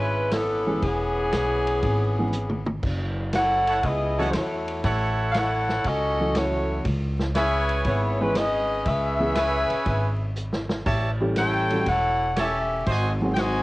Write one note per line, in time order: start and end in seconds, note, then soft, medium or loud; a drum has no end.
0.00 0.78 G#1 medium
0.00 0.33 G#3 medium
0.00 0.32 C#4 medium
0.00 0.33 E4 medium
0.00 0.33 B4 medium
0.31 0.83 E3 medium
0.31 0.83 B3 medium
0.31 0.83 C#4 medium
0.31 0.83 A4 medium
0.31 snare medium
0.31 hi-hat pedal medium
0.31 ride medium
0.66 0.81 E3 medium
0.66 0.81 G#3 medium
0.66 0.81 B3 medium
0.66 0.81 C#4 medium
0.66 0.81 G#4 medium
0.82 1.29 E1 medium
0.82 2.64 E3 medium
0.82 2.64 B3 medium
0.82 2.64 C#4 medium
0.82 2.64 G#4 medium
0.82 kick soft
0.82 ride medium
1.32 1.80 B1 medium
1.32 snare medium
1.32 hi-hat pedal medium
1.32 ride medium
1.67 ride soft
1.83 2.79 G#1 medium
1.83 kick soft
1.83 ride medium
2.19 2.32 E3 medium
2.19 2.33 G#3 soft
2.19 2.33 B3 soft
2.19 2.33 C#4 soft
2.19 2.33 G#4 medium
2.33 hi-hat pedal medium
2.50 mid tom medium
2.66 mid tom medium
2.83 3.80 F#1 medium
2.83 kick medium
2.83 crash medium
3.33 3.82 C#5 medium
3.33 3.82 F#5 loud
3.33 snare medium
3.33 hi-hat pedal soft
3.33 ride medium
3.37 3.82 E4 medium
3.37 3.82 A4 medium
3.67 3.79 E4 medium
3.67 3.79 A4 medium
3.67 3.79 C#5 medium
3.67 3.79 F#5 medium
3.67 ride soft
3.83 4.30 C#2 medium
3.83 4.30 B3 medium
3.83 4.30 E4 medium
3.83 4.30 G#4 medium
3.83 4.30 D#5 medium
3.83 kick soft
3.83 ride medium
4.18 4.33 E3 medium
4.18 4.33 F#3 soft
4.18 4.33 A3 medium
4.18 4.33 C#4 medium
4.18 4.29 E4 medium
4.18 4.33 F#4 medium
4.18 4.29 A4 medium
4.18 4.29 C#5 medium
4.18 4.29 F#5 loud
4.31 4.80 E2 medium
4.31 4.35 C5 medium
4.31 snare medium
4.31 hi-hat pedal medium
4.31 ride medium
4.35 4.85 A3 medium
4.35 4.85 E4 medium
4.35 4.85 F#4 medium
4.35 4.85 C#5 medium
4.68 ride soft
4.84 5.81 A1 medium
4.84 5.62 E4 medium
4.84 5.62 A4 medium
4.84 5.62 C#5 medium
4.84 5.62 F#5 loud
4.84 kick soft
4.84 ride medium
5.32 5.35 F5 medium
5.32 snare medium
5.32 hi-hat pedal soft
5.32 ride medium
5.38 5.87 E4 medium
5.38 5.86 A4 medium
5.38 5.87 C#5 medium
5.38 5.87 F#5 loud
5.69 snare soft
5.84 6.81 C#2 medium
5.84 6.36 C#4 medium
5.84 6.35 F#4 medium
5.84 6.36 A4 medium
5.84 6.36 D#5 medium
5.84 kick soft
5.84 ride medium
6.19 6.82 E3 medium
6.19 6.82 F#3 soft
6.19 6.82 A3 soft
6.19 6.82 C#4 soft
6.19 6.82 F#4 medium
6.35 6.86 A3 medium
6.35 6.86 E4 medium
6.35 6.86 F#4 medium
6.35 6.86 C#5 medium
6.35 snare medium
6.35 hi-hat pedal medium
6.35 ride medium
6.85 7.81 C#2 medium
6.85 kick soft
6.85 ride medium
7.19 snare soft
7.35 7.83 C#4 medium
7.35 8.13 E4 medium
7.35 7.83 G#4 medium
7.35 8.13 B4 medium
7.35 7.83 B4 medium
7.35 8.13 C#5 medium
7.35 7.83 E5 medium
7.35 8.13 G#5 medium
7.35 snare medium
7.35 hi-hat pedal medium
7.35 ride medium
7.69 ride soft
7.85 8.82 G#1 medium
7.85 8.21 B3 medium
7.85 8.20 E4 medium
7.85 8.21 G#4 medium
7.85 8.21 C#5 medium
7.85 kick soft
7.85 ride medium
8.21 8.34 E3 medium
8.21 8.36 G#3 medium
8.21 8.35 G#3 soft
8.21 8.35 B3 soft
8.21 8.36 C#4 medium
8.21 8.35 C#4 soft
8.21 8.36 E4 medium
8.21 8.35 G#4 medium
8.21 8.36 B4 medium
8.35 8.86 C#4 medium
8.35 8.86 G#4 medium
8.35 8.86 B4 medium
8.35 8.87 D#5 medium
8.35 snare medium
8.35 hi-hat pedal medium
8.35 ride medium
8.86 9.66 C#2 medium
8.86 10.33 C#4 medium
8.86 10.33 G#4 medium
8.86 10.33 B4 medium
8.86 10.33 E5 loud
8.86 kick soft
8.86 ride medium
9.19 9.34 E3 medium
9.19 9.34 G#3 medium
9.19 9.34 B3 medium
9.19 9.34 C#4 medium
9.19 9.35 G#4 medium
9.36 10.13 E4 medium
9.36 10.13 B4 medium
9.36 10.13 C#5 medium
9.36 10.13 G#5 medium
9.36 snare medium
9.36 hi-hat pedal medium
9.36 ride medium
9.70 muted upright bass stroke soft
9.70 ride soft
9.86 10.82 G#1 medium
9.86 kick soft
9.86 ride soft
10.36 hi-hat pedal medium
10.53 snare medium
10.69 snare medium
10.86 11.82 A1 medium
10.86 11.10 G4 medium
10.86 11.09 C#5 medium
10.86 11.09 E5 medium
10.86 11.09 A5 medium
10.86 kick medium
10.86 crash medium
11.20 11.67 E3 medium
11.20 11.67 G3 medium
11.20 11.67 A3 medium
11.20 11.68 C#4 medium
11.20 11.68 G4 medium
11.36 11.84 E4 medium
11.36 11.84 A4 medium
11.36 11.84 C#5 medium
11.36 11.84 G5 loud
11.36 snare medium
11.36 hi-hat pedal soft
11.36 ride medium
11.70 11.85 E3 medium
11.70 11.85 G3 medium
11.70 11.85 A3 medium
11.70 11.85 C#4 soft
11.70 11.85 F#4 medium
11.70 ride soft
11.86 12.82 E1 medium
11.86 12.34 E4 medium
11.86 12.34 A4 medium
11.86 12.34 C#5 medium
11.86 12.34 F#5 medium
11.86 kick soft
11.86 ride medium
12.36 12.88 C#4 medium
12.36 12.60 G4 medium
12.36 12.88 G4 medium
12.36 12.88 A4 medium
12.36 12.60 C#5 medium
12.36 12.59 E5 medium
12.36 12.88 E5 medium
12.36 12.60 A5 medium
12.36 snare medium
12.36 hi-hat pedal medium
12.36 ride medium
12.86 13.63 G#1 medium
12.86 13.10 F#4 medium
12.86 13.10 C5 medium
12.86 13.10 D#5 medium
12.86 13.10 G#5 medium
12.86 kick soft
12.86 ride medium
13.21 13.63 D#3 medium
13.21 13.63 F#3 medium
13.21 13.63 G#3 medium
13.21 13.63 C4 medium
13.21 13.63 F#4 medium
13.34 13.38 G5 medium
13.34 snare medium
13.34 hi-hat pedal soft
13.34 ride medium
13.39 13.63 F#4 medium
13.39 13.63 C5 medium
13.39 13.63 D#5 medium
13.39 13.63 G#5 medium